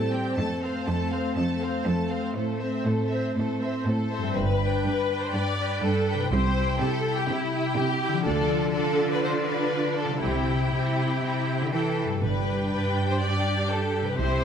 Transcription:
0.00 0.29 A2 soft
0.00 0.33 G3 soft
0.00 0.13 A3 soft
0.00 2.31 C4 soft
0.00 0.13 A4 soft
0.00 0.13 A5 soft
0.12 0.37 C4 soft
0.12 0.37 G4 soft
0.12 0.37 G5 soft
0.36 0.78 F2 medium
0.36 0.60 A3 soft
0.36 4.07 A3 soft
0.36 0.60 A4 soft
0.36 0.59 A5 soft
0.62 0.86 C4 soft
0.62 0.87 C5 soft
0.62 0.87 F5 soft
0.86 1.28 F2 soft
0.86 1.11 A3 soft
0.86 1.11 A4 soft
0.86 1.11 A5 soft
1.10 1.36 C4 soft
1.10 1.36 C5 soft
1.10 1.35 F5 soft
1.36 1.77 F2 soft
1.36 1.59 A3 soft
1.36 1.59 A4 soft
1.36 1.59 A5 soft
1.61 1.85 C4 soft
1.61 1.85 C5 soft
1.61 1.86 F5 soft
1.85 2.27 F2 soft
1.85 2.10 A3 soft
1.85 2.10 A4 soft
1.85 2.10 A5 soft
2.10 2.35 C4 soft
2.10 2.36 C5 soft
2.10 2.35 F5 soft
2.34 2.77 A2 soft
2.34 2.59 A3 soft
2.34 4.06 C4 soft
2.34 2.59 A4 soft
2.34 2.58 C5 soft
2.60 2.86 C4 soft
2.60 2.86 C5 soft
2.60 2.85 E5 soft
2.84 3.28 A2 soft
2.84 3.11 A3 soft
2.84 3.11 A4 soft
2.84 3.10 C5 soft
3.09 3.36 C4 soft
3.09 3.36 C5 soft
3.09 3.35 E5 soft
3.35 3.78 A2 soft
3.35 3.59 A3 soft
3.35 3.59 A4 soft
3.35 3.59 C5 soft
3.61 3.86 C4 soft
3.61 3.86 C5 soft
3.61 3.86 E5 soft
3.85 4.27 A2 soft
3.85 4.11 A3 soft
3.85 4.32 A4 soft
3.85 4.11 C5 soft
4.11 4.36 C4 soft
4.11 4.35 C5 soft
4.11 4.36 E5 soft
4.18 6.25 G2 soft
4.22 6.17 G3 soft
4.27 8.17 G4 soft
4.32 4.83 B4 soft
4.32 6.32 D5 soft
4.36 4.77 G1 soft
4.36 4.77 G2 soft
4.60 5.08 D4 soft
4.60 5.08 B4 soft
4.60 5.09 G5 soft
4.85 5.26 G2 soft
4.85 5.22 B4 soft
5.09 5.57 D4 soft
5.09 5.57 B4 soft
5.09 5.58 G5 soft
5.23 5.34 C5 soft
5.33 5.75 G2 soft
5.33 5.82 D5 medium
5.58 6.06 D4 soft
5.58 6.06 B4 soft
5.58 6.07 G5 soft
5.81 6.24 G2 soft
5.81 6.18 A4 medium
6.07 6.31 D4 soft
6.07 6.31 B4 soft
6.07 6.31 G5 soft
6.14 8.19 C3 soft
6.18 8.21 G3 soft
6.18 6.32 B4 soft
6.23 8.24 E4 soft
6.27 6.79 C5 medium
6.27 8.26 E5 soft
6.31 6.73 C2 medium
6.31 6.73 C3 soft
6.31 6.55 E4 soft
6.31 6.55 G4 soft
6.31 6.56 G5 soft
6.56 7.03 E4 soft
6.56 7.04 G4 soft
6.56 7.05 G5 soft
6.79 7.21 C3 medium
6.79 7.15 A4 medium
7.05 7.51 E4 soft
7.05 7.52 G4 soft
7.05 7.52 G5 soft
7.18 7.29 G4 soft
7.28 7.69 C3 medium
7.28 7.77 E4 medium
7.53 8.00 E4 soft
7.53 8.00 G4 soft
7.53 8.01 G5 soft
7.76 8.18 C3 medium
7.76 8.24 G4 medium
8.01 8.25 E4 soft
8.01 8.25 G4 soft
8.01 8.26 G5 soft
8.08 10.16 D3 soft
8.12 10.18 F3 soft
8.17 10.20 F4 soft
8.21 8.71 D4 soft
8.21 8.71 F4 soft
8.21 8.72 A4 medium
8.21 10.22 D5 soft
8.26 8.71 D2 soft
8.26 10.19 D3 medium
8.26 8.72 D5 soft
8.73 10.20 D4 soft
8.73 10.19 F4 soft
8.73 9.10 A4 medium
8.73 10.19 D5 medium
9.11 9.23 B4 medium
9.23 9.31 C5 medium
9.48 9.96 B4 medium
9.98 10.22 A4 medium
10.05 12.15 C3 soft
10.09 12.08 G3 soft
10.14 12.20 E4 soft
10.18 10.69 C2 soft
10.18 10.66 C3 soft
10.18 11.69 E4 soft
10.18 11.69 G4 soft
10.18 12.22 E5 soft
10.22 11.69 E4 soft
10.22 11.70 G5 soft
10.73 11.19 C3 soft
11.22 11.59 C3 soft
11.61 11.73 D3 soft
11.72 12.22 E3 soft
11.72 12.02 E4 soft
11.72 11.81 G4 soft
11.72 12.21 A4 soft
11.72 12.02 G5 soft
12.05 14.13 G2 soft
12.09 14.04 G3 soft
12.14 14.44 G4 soft
12.18 14.15 G2 soft
12.18 14.19 D5 soft
12.22 12.68 G1 soft
12.22 14.16 D4 soft
12.22 14.44 G4 soft
12.22 12.71 B4 medium
12.22 14.16 G5 soft
12.72 13.08 B4 soft
13.09 13.21 C5 soft
13.20 13.69 D5 medium
13.70 14.07 A4 medium
14.01 14.44 C3 soft
14.06 14.44 G3 soft
14.06 14.19 B4 soft
14.10 14.44 E4 soft
14.15 14.44 E4 soft
14.15 14.44 C5 medium
14.15 14.44 E5 soft
14.19 14.44 C2 soft
14.19 14.44 C3 soft
14.19 14.44 E5 soft

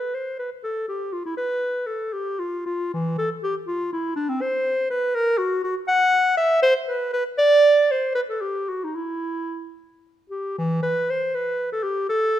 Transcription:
0.00 0.16 B4 medium
0.14 0.39 C5 medium
0.39 0.50 B4 medium
0.64 0.88 A4 medium
0.88 1.14 G4 medium
1.13 1.25 F4 medium
1.26 1.36 E4 medium
1.37 1.88 B4 medium
1.87 2.15 A4 medium
2.13 2.41 G4 medium
2.39 2.65 F4 medium
2.66 2.92 F4 medium
2.94 3.18 E3 medium
3.18 3.30 A4 medium
3.43 3.55 G4 medium
3.67 3.92 F4 medium
3.93 4.15 E4 medium
4.16 4.30 D4 medium
4.29 4.43 C4 medium
4.41 4.90 C5 loud
4.90 5.17 B4 medium
5.15 5.39 A#4 loud
5.38 5.63 F#4 medium
5.64 5.75 F#4 medium
5.88 6.36 F#5 loud
6.37 6.62 E5 loud
6.63 6.74 C5 loud
6.87 7.12 B4 medium
7.13 7.24 B4 medium
7.38 7.93 D5 loud
7.91 8.15 C5 medium
8.15 8.21 B4 medium
8.30 8.43 A4 medium
8.41 8.70 G4 medium
8.69 8.85 F#4 medium
8.84 8.97 D#4 medium
8.96 9.75 E4 medium
10.30 10.54 G4 medium
10.58 10.82 E3 medium
10.83 11.12 B4 medium
11.10 11.36 C5 medium
11.35 11.71 B4 medium
11.72 11.85 A4 medium
11.83 12.08 G4 medium
12.09 12.39 A4 loud

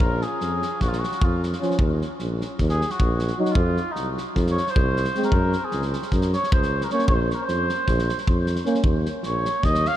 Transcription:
0.00 0.23 A#1 loud
0.00 0.24 A#4 medium
0.00 kick loud
0.22 0.83 G#4 medium
0.22 snare soft
0.41 0.63 F2 medium
0.41 snare soft
0.62 snare soft
0.80 1.03 A#1 medium
0.80 0.89 F#4 medium
0.80 kick medium
0.80 snare soft
0.88 1.00 F4 medium
0.93 snare soft
0.99 1.26 F#4 medium
1.04 snare soft
1.12 snare soft
1.22 1.54 F2 medium
1.22 1.44 F4 medium
1.22 kick loud
1.43 snare soft
1.53 snare soft
1.61 1.77 F3 medium
1.61 1.77 C#4 medium
1.61 snare soft
1.71 snare soft
1.79 2.02 D#2 medium
1.79 kick medium
2.02 snare soft
2.19 2.42 A#1 medium
2.19 snare soft
2.41 snare soft
2.59 2.82 D#2 medium
2.59 kick medium
2.59 snare soft
2.69 2.92 G#4 loud
2.69 snare soft
2.81 snare soft
2.90 3.41 F#4 medium
2.90 snare soft
3.00 3.31 A#1 medium
3.00 kick medium
3.19 snare soft
3.28 snare soft
3.38 3.54 F#3 medium
3.38 3.55 D#4 medium
3.38 3.53 F#4 medium
3.46 snare soft
3.51 3.93 F4 medium
3.55 3.78 F2 loud
3.55 kick loud
3.77 snare soft
3.92 4.10 D#4 medium
3.92 snare soft
3.97 4.19 C2 medium
4.18 snare soft
4.36 4.58 F2 loud
4.36 kick medium
4.36 snare soft
4.47 snare soft
4.51 4.71 C#5 medium
4.58 snare soft
4.67 5.24 C5 medium
4.67 snare soft
4.76 5.07 C2 medium
4.76 kick loud
4.97 snare soft
5.05 snare soft
5.15 5.32 G#3 medium
5.15 5.32 C4 medium
5.15 snare soft
5.23 5.66 A#4 medium
5.23 snare soft
5.32 5.54 F#2 loud
5.32 kick medium
5.53 snare soft
5.64 5.84 G#4 medium
5.72 5.95 C#2 medium
5.72 snare soft
5.82 snare soft
5.93 snare soft
6.02 snare soft
6.12 6.34 F#2 medium
6.12 kick medium
6.12 snare soft
6.22 snare soft
6.33 6.51 C#5 loud
6.33 snare soft
6.44 snare soft
6.52 6.84 C#2 medium
6.52 6.86 C5 medium
6.52 kick loud
6.63 snare soft
6.81 6.92 A#4 medium
6.81 snare soft
6.90 7.08 A#3 soft
6.90 7.07 C#4 medium
6.90 7.07 C#5 medium
6.90 snare soft
6.99 snare soft
7.08 7.31 A#1 loud
7.08 7.28 C5 medium
7.08 kick loud
7.31 7.46 A#4 medium
7.31 7.36 C5 medium
7.31 snare soft
7.45 7.71 F2 medium
7.45 8.29 C5 medium
7.45 snare soft
7.70 snare soft
7.88 8.10 A#1 medium
7.88 kick medium
7.88 snare soft
7.99 snare soft
8.09 snare soft
8.18 snare soft
8.27 8.60 F2 medium
8.27 kick medium
8.47 snare soft
8.56 snare soft
8.65 8.82 A#3 medium
8.65 8.81 C#4 medium
8.65 snare soft
8.75 snare soft
8.84 9.06 D#2 medium
8.84 kick loud
9.06 snare soft
9.23 9.46 A#1 medium
9.23 9.66 C#5 medium
9.23 snare soft
9.45 snare soft
9.63 9.86 D#2 medium
9.63 9.89 D#5 loud
9.63 kick medium
9.63 snare soft
9.75 snare soft
9.85 9.97 F5 loud
9.85 snare soft

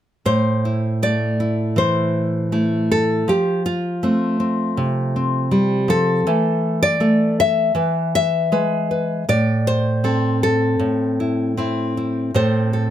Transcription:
0.25 3.27 A2 medium
0.25 1.02 C5 medium
0.65 1.39 E4 soft
1.02 2.52 A3 medium
1.02 1.78 D5 medium
1.40 2.51 E4 soft
1.76 3.22 E3 medium
1.76 2.90 C5 medium
2.52 3.32 A3 medium
2.52 3.27 E4 soft
2.92 3.28 A4 medium
3.28 5.87 F3 medium
3.28 3.65 G4 medium
3.66 6.26 F4 medium
4.03 5.51 A3 medium
4.03 4.39 C4 soft
4.40 5.14 C4 soft
4.77 6.22 C3 medium
5.16 6.27 C4 soft
5.51 5.89 G3 medium
5.88 6.26 F3 medium
5.88 6.82 A4 medium
6.27 7.74 E3 medium
6.27 6.99 A3 soft
6.83 7.38 D5 loud
7.00 7.71 A3 medium
7.00 7.71 A4 soft
7.40 8.14 E5 loud
7.75 9.28 E3 medium
7.75 8.51 B4 soft
8.15 9.28 E5 loud
8.52 9.23 G#3 medium
8.52 8.90 B4 soft
8.91 9.24 B4 soft
9.29 10.78 A2 medium
9.29 10.04 D5 loud
9.67 11.20 C5 loud
10.04 11.56 C4 medium
10.04 10.42 A4 soft
10.43 12.35 A4 medium
10.79 12.33 A2 medium
11.20 11.57 E4 soft
11.57 12.30 C4 medium
11.57 11.96 E4 soft
11.97 12.35 E4 soft
12.34 12.90 A2 medium
12.34 12.90 C4 soft
12.34 12.73 A4 soft
12.34 12.90 C5 medium
12.73 12.90 A4 soft

